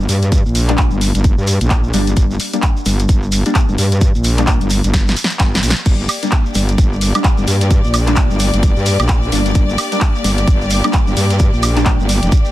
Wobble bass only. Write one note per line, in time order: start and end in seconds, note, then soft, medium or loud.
0.09 0.44 G2 medium
0.46 0.90 A#1 medium
0.92 1.13 G1 medium
1.15 1.36 G1 loud
1.38 1.59 G2 medium
1.61 1.92 A#1 medium
1.94 2.15 G1 medium
2.17 2.38 G1 medium
2.86 3.08 G1 loud
3.09 3.44 G1 medium
3.69 3.77 G1 loud
3.78 4.13 G2 medium
4.15 4.59 A#1 medium
4.61 4.82 G1 medium
4.84 5.15 G1 loud
5.40 5.61 G1 loud
5.63 5.74 A#1 medium
5.86 6.08 G1 medium
6.55 6.77 G1 loud
6.78 7.13 G1 medium
7.38 7.46 G1 medium
7.48 7.82 G2 medium
7.84 8.28 A#1 medium
8.30 8.51 G1 medium
8.54 8.74 G1 loud
8.77 8.98 G2 medium
9.00 9.31 A#1 loud
9.32 9.54 G1 medium
9.55 9.77 G1 medium
10.24 10.46 G1 loud
10.48 10.82 G1 loud
11.07 11.15 G1 medium
11.17 11.51 G2 medium
11.53 11.97 A#1 medium
12.00 12.21 G1 medium
12.23 12.31 F1 medium